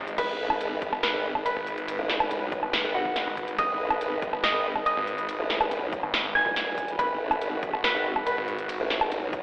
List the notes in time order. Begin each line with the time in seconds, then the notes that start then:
Already playing: G#1 G#3 D#4 D#5, noise sweep
0.08 closed hi-hat
0.18 G#1 B4 B5, kick, closed hi-hat, crash, ride
0.39 A1
0.50 closed hi-hat, low woodblock
0.61 G#1, closed hi-hat, ride
0.82 kick, closed hi-hat
0.93 G#1, low woodblock
1.03 B4 B5, snare, closed hi-hat, ride
1.14 G#1
1.35 kick, low woodblock
1.46 B4 B5, closed hi-hat, ride
1.56 G#1
1.67 closed hi-hat
1.78 closed hi-hat
1.88 closed hi-hat, ride
1.99 A1
2.10 snare
2.20 G#1, closed hi-hat, low woodblock
2.31 closed hi-hat, ride
2.42 B1
2.52 kick, closed hi-hat
2.63 G#1, low woodblock
2.73 snare, closed hi-hat, ride
2.84 G#1
2.95 F#4 F#5
3.05 kick
3.16 snare, closed hi-hat, ride
3.27 G#1
3.37 kick, closed hi-hat
3.48 closed hi-hat
3.58 G#1 D#5 D#6, kick, closed hi-hat, ride
3.80 A1
3.90 closed hi-hat, low woodblock
4.01 G#1, closed hi-hat, ride
4.22 kick, closed hi-hat
4.33 G#1, low woodblock
4.44 D#5 D#6, snare, closed hi-hat, ride
4.54 G#1
4.76 kick, low woodblock
4.86 D#5 D#6, closed hi-hat, ride
4.97 G#1
5.07 closed hi-hat
5.18 closed hi-hat
5.29 closed hi-hat, ride
5.39 A1
5.50 snare
5.61 G#1, closed hi-hat, low woodblock
5.71 closed hi-hat, ride
5.82 B1
5.93 kick, closed hi-hat
6.03 G#1, low woodblock
6.14 snare, closed hi-hat, ride
6.25 G#1
6.35 G#5 G#6
6.46 D#1, kick
6.56 snare, closed hi-hat, ride
6.78 kick, closed hi-hat
6.88 closed hi-hat
6.99 G#1 F#4 B4 B5, kick, closed hi-hat, ride
7.20 A1
7.31 closed hi-hat, low woodblock
7.41 G#1, closed hi-hat, ride
7.63 kick, closed hi-hat
7.73 G#1, low woodblock
7.84 B4 B5, snare, closed hi-hat, ride
7.95 G#1
8.16 kick, low woodblock
8.27 B4 B5, closed hi-hat, ride
8.37 G#1
8.48 closed hi-hat
8.59 closed hi-hat
8.69 closed hi-hat, ride
8.80 A1
8.90 snare
9.01 G#1, closed hi-hat, low woodblock
9.12 closed hi-hat, ride
9.22 B1
9.33 kick, closed hi-hat